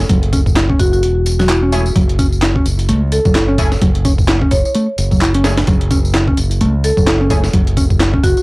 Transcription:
0.00 tambourine
0.09 F#1 F#3, kick, closed hi-hat, tambourine
0.23 closed hi-hat
0.33 C#4, kick, closed hi-hat, tambourine
0.46 kick, tambourine
0.56 E4, snare, clap, closed hi-hat, tambourine
0.70 C#4, kick
0.79 F#1 F#4, kick, closed hi-hat, tambourine
0.93 F#4, tambourine
1.03 E1, closed hi-hat, tambourine
1.26 closed hi-hat, tambourine
1.39 F#3 F#4, snare, tambourine
1.49 E4, clap, closed hi-hat, tambourine
1.63 C#4
1.72 A3 C#4 E4 G#4, closed hi-hat, tambourine
1.86 tambourine
1.96 F#1 F#3, kick, closed hi-hat, tambourine
2.09 closed hi-hat
2.19 C#4, kick, closed hi-hat, tambourine
2.32 tambourine
2.42 E4, snare, clap, closed hi-hat, tambourine
2.56 C#4, kick
2.66 F#1, closed hi-hat, tambourine
2.79 closed hi-hat, tambourine
2.89 C#2 A3, closed hi-hat, tambourine
3.12 A4, closed hi-hat, tambourine
3.25 F#1 F#3, kick, tambourine
3.35 E4, snare, clap, closed hi-hat, tambourine
3.49 C#4
3.58 A3 C#4 E4 G#4, kick, closed hi-hat, tambourine
3.72 snare, tambourine
3.82 F#1 F#3, kick, closed hi-hat, tambourine
3.95 closed hi-hat
4.05 C#4, kick, closed hi-hat, tambourine
4.18 kick, tambourine
4.28 E4, snare, clap, closed hi-hat, tambourine
4.42 C#4, kick
4.51 F#1 C#5, kick, closed hi-hat, tambourine
4.65 C#5, tambourine
4.74 A3, closed hi-hat, tambourine
4.98 F#1, closed hi-hat, tambourine
5.11 F#3, kick, tambourine
5.21 E4, clap, tambourine
5.34 C#4, closed hi-hat
5.44 A3 C#4 E4 G#4, snare, closed hi-hat, tambourine
5.58 snare, closed hi-hat, tambourine
5.67 F#1 F#3, kick, closed hi-hat, tambourine
5.81 closed hi-hat
5.91 C#4, kick, closed hi-hat, tambourine
6.05 tambourine
6.14 E4, snare, clap, closed hi-hat
6.28 C#4, kick
6.37 F#1, closed hi-hat, tambourine
6.51 closed hi-hat, tambourine
6.61 C#2 A3, closed hi-hat, tambourine
6.84 A4, closed hi-hat, tambourine
6.97 F#1 F#3, kick, tambourine
7.07 E4, snare, clap, closed hi-hat
7.21 C#4
7.30 A3 C#4 E4 G#4, kick, closed hi-hat, tambourine
7.44 snare, tambourine
7.54 F#1 F#3, kick, closed hi-hat
7.67 closed hi-hat
7.77 C#4, kick, closed hi-hat, tambourine
7.90 kick, tambourine
8.00 E4, snare, clap, closed hi-hat, tambourine
8.14 C#4, kick
8.23 F#1 F#4, kick, closed hi-hat, tambourine
8.37 F#4, tambourine

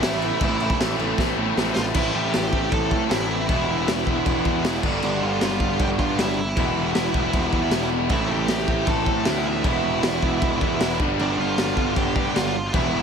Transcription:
Already playing: A2 E3 A3 C4 E4
0.02 A1 A2 E3 A3 C4 E4 E5, snare, crash
0.22 A2 E3 A3 C4 E4, crash
0.41 A1 A2 E3 A3 C4 E4 E5, kick, crash
0.60 A2 E3 A3 C4 E4, crash
0.70 kick
0.79 A1 A2 E3 A3 C4 E4, snare, crash
0.99 A1 A2 E3 A3 C4 E4, crash
1.18 A1 A2 E3 A3 C4 E4, kick, snare
1.37 A1 A2 E3 A3 C4 E4
1.57 A1 A2 E3 A3 C4 E4, snare
1.75 A1 A2 E3 C4 F4 F5, snare
1.79 A3 E4
1.94 A1 A2 E3 A3 C4 E4 E5, kick, crash
1.98 E4
2.14 A1 G4 G5
2.33 A1, snare, crash
2.53 A1 A2 E3 A3 C4 E4, kick
2.72 A1 A4 A5, kick, crash
2.91 A2, kick
3.11 A1 A2 E3 A3 C4 E4 E5, snare, crash
3.30 E4 E5
3.49 E1 E2 B2 E3 G#3 B3 E4, kick, crash
3.69 E1
3.88 E1, snare, crash
4.07 E1 E3 G#3 B3 E4, kick
4.26 E1, kick, crash
4.45 E2, kick
4.64 E1 E3 G#3 B3 E4, snare, crash
4.83 G1 G2 D3 G3 B3 D4, kick, crash
5.02 G1 D4 D5, crash
5.23 G1 F4 F5
5.41 G1 G2 D3 G3 B3 D4, snare, crash
5.60 G1, kick
5.80 G1 G4 G5, kick, crash
5.99 G2 D3 G3 B3 D4 F4 F5, kick
6.18 G1 E4 E5, snare, crash
6.39 E4 E5
6.57 E1 E2 B2 E3 G3 B3 E4, kick, crash
6.76 E1
6.95 E1, snare, crash
7.14 E1 E3 G3 B3 E4, kick
7.33 E1, kick, crash
7.52 E2, kick
7.71 E1 E3 G3 B3, snare, crash
7.76 E4
8.09 A1 A2 E3 A3 C4 E4 E5, kick, crash
8.30 A1 G4 G5
8.48 A1, snare, crash
8.68 A1 A2 E3 A3 C4 E4, kick
8.86 A1 A4 A5, kick, crash
9.06 A2, kick
9.25 D2 A2 E3 A3 E4, snare, crash
9.29 C4 E4 E5
9.47 E4 E5
9.64 E1 E2 B2 E3 G#3 B3 E4, kick, crash
9.83 E1
10.03 E1, snare, crash
10.22 E1 E3 G#3 B3 E4, kick
10.42 E1, kick, crash
10.61 E2, kick
10.80 E1 E3 G#3 B3 E4, snare, crash
11.00 G1 G2 D3 G3 B3, kick
11.04 D4
11.19 G1 D4 D5, crash
11.38 G1 F4 F5
11.58 G1 G2 D3 G3 B3 D4, snare, crash
11.77 G1, kick
11.96 G1 G4 G5, kick, crash
12.16 G2 D3 G3 B3 D4, kick
12.35 G1 F4 F5, snare, crash
12.73 E1 E2 B2 E3 G3 B3 E4 E5, kick, crash
12.93 E1

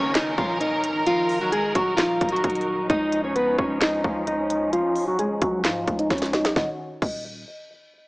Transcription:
Already playing: F#1 D#3 C#4 A#4 C#5, downlifter
0.15 D#4 D#5, snare, clap, closed hi-hat
0.38 D#1 F3 F4, kick
0.60 D#4 D#5, closed hi-hat
0.84 C#1, closed hi-hat
1.06 F3 D#4 F4, closed hi-hat
1.29 open hi-hat
1.41 F#3 F#4
1.52 G#3 G#4, closed hi-hat
1.75 D#1 F#3 F#4, kick, closed hi-hat
1.97 F3 F4, snare, clap, closed hi-hat
2.21 D#1, kick, closed hi-hat
2.29 F#4, closed hi-hat
2.33 F#3, closed hi-hat
2.44 D#1, kick, closed hi-hat
2.50 closed hi-hat
2.55 closed hi-hat
2.61 closed hi-hat
2.90 C#2 F3 C#4 D#4 D#5, kick, closed hi-hat
3.12 closed hi-hat
3.24 C#4 C#5
3.36 B3 B4, closed hi-hat
3.58 C#2 C#4 C#5, kick
3.81 D#4 D#5, snare, clap, closed hi-hat
4.04 C#2 F3 F4, kick
4.27 D#4 D#5, closed hi-hat
4.50 closed hi-hat
4.73 F3 F4, closed hi-hat
4.96 open hi-hat
5.08 F#3 F#4
5.19 G#3 G#4, closed hi-hat
5.42 C#2 F#3 F#4, kick, closed hi-hat
5.65 G#2 F3 F4, snare, clap, closed hi-hat
5.87 C#2, kick, closed hi-hat
5.99 D#4 D#5, closed hi-hat
6.10 C#2 C#4 C#5, kick, snare, closed hi-hat
6.18 snare, closed hi-hat
6.26 closed hi-hat
6.33 D#4 D#5, snare
6.45 B1, snare
6.56 D#1 D#3 C#4 F#4 D#5, kick, snare
7.02 D#1 D#5, kick, crash

